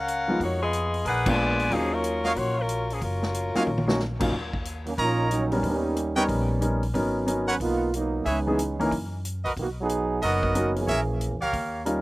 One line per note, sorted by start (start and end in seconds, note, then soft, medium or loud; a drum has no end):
0.00 0.37 C#2 medium
0.00 0.41 C#4 medium
0.00 0.41 A#4 medium
0.00 0.41 F5 medium
0.00 0.41 F#5 medium
0.08 closed hi-hat medium
0.28 0.39 F3 medium
0.28 0.39 G#3 medium
0.28 0.39 B3 medium
0.28 0.39 D#4 medium
0.28 0.39 F4 medium
0.40 1.02 F2 medium
0.40 0.60 A#3 medium
0.40 0.60 D#4 medium
0.40 0.60 F#4 medium
0.40 0.60 C#5 medium
0.40 kick soft
0.40 open hi-hat soft
0.61 1.02 B3 medium
0.61 1.03 F4 medium
0.61 1.02 G#4 medium
0.61 1.02 D#5 medium
0.73 closed hi-hat medium
0.94 open hi-hat soft
1.05 1.67 A#1 medium
1.05 1.27 D#4 medium
1.05 1.27 G#4 medium
1.05 1.55 A#4 medium
1.05 1.55 B4 medium
1.05 1.27 B4 medium
1.05 1.55 D5 medium
1.05 1.27 F#5 medium
1.05 1.55 G#5 medium
1.05 kick soft
1.05 open hi-hat soft
1.26 1.68 G#3 medium
1.26 1.68 A#3 medium
1.26 1.69 B3 medium
1.26 1.69 D4 medium
1.26 1.69 F4 medium
1.26 1.71 F4 medium
1.26 1.71 B4 medium
1.26 1.71 D5 medium
1.26 1.72 G#5 loud
1.26 kick medium
1.26 crash medium
1.59 open hi-hat soft
1.69 2.33 D#2 medium
1.69 1.92 F3 medium
1.69 2.61 F#3 medium
1.69 2.61 A#3 soft
1.69 1.92 A#3 medium
1.69 2.62 C#4 soft
1.69 1.92 C#4 medium
1.69 2.62 D#4 soft
1.69 2.62 F4 medium
1.69 1.93 G#4 medium
1.69 kick soft
1.69 open hi-hat soft
1.93 2.37 F#3 medium
1.93 2.37 C#4 medium
1.93 2.36 F4 medium
1.93 2.37 A#4 loud
2.04 closed hi-hat medium
2.24 2.32 F#4 medium
2.24 2.32 C#5 medium
2.24 2.32 D#5 medium
2.24 2.32 F5 medium
2.24 snare soft
2.24 open hi-hat soft
2.36 2.98 A#1 medium
2.36 2.57 A#3 medium
2.36 2.57 F4 medium
2.36 2.57 F#4 medium
2.36 2.57 C#5 medium
2.36 kick soft
2.36 open hi-hat soft
2.58 2.90 F#3 medium
2.58 2.90 C#4 medium
2.58 2.90 F4 medium
2.58 2.90 A#4 medium
2.69 closed hi-hat medium
2.90 3.02 F3 medium
2.90 3.02 A#3 medium
2.90 3.01 C#4 medium
2.90 3.02 G#4 medium
2.90 open hi-hat soft
3.02 3.51 F#1 medium
3.02 4.17 F#3 medium
3.02 4.17 C#4 medium
3.02 4.17 F4 medium
3.02 4.17 A#4 medium
3.02 kick soft
3.02 open hi-hat soft
3.23 snare medium
3.34 closed hi-hat medium
3.55 3.66 F#3 medium
3.55 3.65 A#3 medium
3.55 3.66 C#4 medium
3.55 3.66 D#4 medium
3.55 3.66 F4 medium
3.55 3.63 F#4 medium
3.55 3.63 C#5 medium
3.55 3.63 D#5 medium
3.55 3.63 F5 medium
3.55 muted upright bass stroke soft
3.55 snare medium
3.55 open hi-hat soft
3.67 4.29 A#1 medium
3.67 high tom soft
3.78 high tom medium
3.87 3.98 F#3 medium
3.87 3.98 A#3 medium
3.87 3.98 C#4 medium
3.87 3.98 D#4 medium
3.87 3.98 F#4 medium
3.87 snare medium
4.00 snare medium
4.19 4.30 F#3 medium
4.19 4.31 A#3 medium
4.19 4.31 C#4 medium
4.19 4.31 D#4 medium
4.19 4.31 F4 medium
4.19 kick medium
4.19 crash medium
4.33 4.95 D#2 medium
4.33 kick soft
4.53 kick medium
4.65 closed hi-hat medium
4.86 4.91 D#3 medium
4.86 4.91 F#3 medium
4.86 4.92 A#3 medium
4.86 4.92 C#4 medium
4.86 open hi-hat soft
4.98 5.60 A#1 medium
4.98 5.28 A#3 medium
4.98 5.28 C#4 medium
4.98 5.28 D#4 medium
4.98 5.29 F4 loud
4.98 5.47 A#4 medium
4.98 5.47 C#5 medium
4.98 5.47 D#5 medium
4.98 5.47 A#5 medium
4.98 kick soft
4.98 open hi-hat soft
5.31 5.61 F#3 medium
5.31 5.61 A#3 medium
5.31 5.61 C#4 medium
5.31 5.61 D#4 medium
5.31 closed hi-hat medium
5.51 5.94 G3 medium
5.51 5.94 B3 medium
5.51 5.94 C#4 medium
5.51 5.94 D#4 medium
5.51 5.94 A#4 medium
5.51 open hi-hat soft
5.63 6.25 D#2 medium
5.63 6.25 G3 medium
5.63 6.25 A#3 medium
5.63 6.25 C#4 medium
5.63 6.25 D#4 medium
5.63 kick soft
5.63 open hi-hat soft
5.96 closed hi-hat medium
6.15 6.58 G3 medium
6.15 6.59 B3 medium
6.15 6.59 C#4 medium
6.15 6.59 D#4 medium
6.15 6.59 A#4 medium
6.15 6.24 B4 medium
6.15 6.24 C#5 medium
6.15 6.24 D#5 medium
6.15 6.24 G5 loud
6.15 open hi-hat soft
6.29 6.91 A#1 medium
6.29 kick soft
6.29 open hi-hat soft
6.61 6.80 G3 medium
6.61 6.80 B3 medium
6.61 6.80 C#4 medium
6.61 6.80 D#4 medium
6.61 6.81 A#4 medium
6.61 closed hi-hat medium
6.83 open hi-hat soft
6.94 7.56 G#1 medium
6.94 7.25 F#3 medium
6.94 7.25 B3 medium
6.94 7.26 C#4 medium
6.94 7.26 D#4 medium
6.94 7.26 A#4 medium
6.94 kick soft
6.94 open hi-hat soft
7.26 7.45 F#3 medium
7.26 7.46 B3 medium
7.26 7.46 C#4 medium
7.26 7.46 D#4 medium
7.26 7.46 A#4 medium
7.26 closed hi-hat medium
7.48 7.59 F#3 medium
7.48 7.59 A#3 medium
7.48 7.59 B3 medium
7.48 7.59 C#4 medium
7.48 7.56 A#4 medium
7.48 7.56 B4 medium
7.48 7.56 C#5 medium
7.48 7.56 F#5 loud
7.48 open hi-hat soft
7.60 8.22 B1 medium
7.60 7.90 A#3 medium
7.60 7.90 B3 medium
7.60 7.90 D#4 medium
7.60 7.91 F4 loud
7.60 kick soft
7.60 open hi-hat medium
7.94 8.24 F#3 medium
7.94 8.24 A#3 medium
7.94 8.24 B3 medium
7.94 8.24 D#4 loud
7.94 closed hi-hat medium
8.25 8.88 C#2 medium
8.25 8.88 G#3 medium
8.25 8.88 B3 medium
8.25 8.88 C#4 medium
8.25 8.88 D#4 medium
8.25 8.39 G#4 medium
8.25 8.39 B4 medium
8.25 8.39 C#5 medium
8.25 8.39 E5 medium
8.25 kick soft
8.25 open hi-hat soft
8.47 8.57 E3 medium
8.47 8.57 B3 medium
8.47 8.57 C#4 medium
8.47 8.57 D#4 medium
8.47 8.58 G#4 medium
8.59 closed hi-hat medium
8.79 8.90 E3 medium
8.79 8.90 A#3 medium
8.79 8.90 C#4 medium
8.79 8.90 D#4 medium
8.79 8.90 A#4 medium
8.79 open hi-hat soft
8.91 9.41 F#2 medium
8.91 kick soft
8.91 open hi-hat soft
9.25 closed hi-hat medium
9.44 9.55 C2 medium
9.44 9.52 F#4 medium
9.44 9.52 A#4 medium
9.44 9.52 B4 medium
9.44 9.52 D#5 medium
9.44 open hi-hat soft
9.56 10.18 B1 medium
9.56 9.68 D#3 medium
9.56 9.68 A#3 medium
9.56 9.68 B3 medium
9.56 9.68 F#4 medium
9.56 kick soft
9.56 open hi-hat soft
9.80 10.20 F#3 medium
9.80 10.20 B3 medium
9.80 10.20 D#4 medium
9.80 10.20 G#4 loud
9.89 closed hi-hat medium
10.22 10.84 F#1 medium
10.22 10.55 F#3 medium
10.22 10.71 B3 medium
10.22 10.55 B3 medium
10.22 10.55 D#4 medium
10.22 10.71 F#4 medium
10.22 10.71 A#4 medium
10.22 10.55 A#4 loud
10.22 10.71 D#5 loud
10.22 kick soft
10.22 open hi-hat soft
10.43 kick medium
10.55 10.75 D#3 medium
10.55 10.87 F#3 medium
10.55 10.75 A#3 medium
10.55 10.87 B3 soft
10.55 10.75 B3 medium
10.55 10.87 C#4 medium
10.55 10.88 D#4 soft
10.55 10.75 F#4 medium
10.55 10.88 A#4 medium
10.55 closed hi-hat medium
10.76 11.37 E3 medium
10.76 11.38 A#3 medium
10.76 11.37 C#4 medium
10.76 11.38 G#4 medium
10.76 open hi-hat soft
10.87 11.28 A#1 medium
10.87 11.01 G#4 medium
10.87 11.01 A#4 medium
10.87 11.01 C#5 medium
10.87 11.01 E5 medium
10.87 kick soft
10.87 open hi-hat soft
11.21 closed hi-hat medium
11.31 11.41 E2 medium
11.41 11.52 C#2 medium
11.41 11.83 G4 medium
11.41 11.83 A#4 medium
11.41 11.83 C#5 medium
11.41 11.83 F5 loud
11.41 open hi-hat soft
11.53 12.02 D#2 medium
11.53 kick soft
11.53 open hi-hat soft
11.85 12.02 G3 medium
11.85 12.02 C#4 medium
11.85 12.02 D#4 medium
11.85 12.02 F4 medium
11.85 12.02 A#4 medium
11.85 closed hi-hat medium